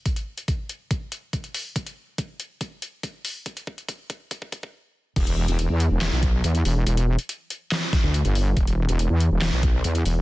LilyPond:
<<
  \new Staff \with { instrumentName = "Wobble bass" } { \clef bass \time 4/4 \key e \minor \tempo 4 = 141 r1 | r1 | r1 | e,,8. e,,8 e,8 e,,8 b,,8. e,8 e,,8 |
e,,8. r2 d,8 g,,8. | e,,8. e,,8 e,8 e,,8 b,,8. e,8 e,,8 | }
  \new DrumStaff \with { instrumentName = "Drums" } \drummode { \time 4/4 <hh bd>16 hh8 hh16 <hh bd>8 hh8 <hh bd>8 hh8 <hh bd>16 hh16 hho8 | <hh bd>16 hh8. <hh bd>8 hh8 <hh bd>8 hh8 <hh bd>8 hho8 | <hh bd>16 hh16 bd16 hh16 <hh bd>8 <hh bd>8 <hh bd>16 bd16 <hh bd>16 bd16 r4 | <cymc hh bd>16 hh8 hh16 hh8 hh8 <hc hh sn>8 <hh bd>8 hh16 hh16 hho8 |
hh16 hh8 hh16 hh8 hh8 <hc hh sn>8 <hh bd sn>8 hh16 hh16 hho8 | <hh bd>16 hh8 hh16 hh8 hh8 <hc hh sn>8 <hh bd>8 hh16 hh16 hho8 | }
>>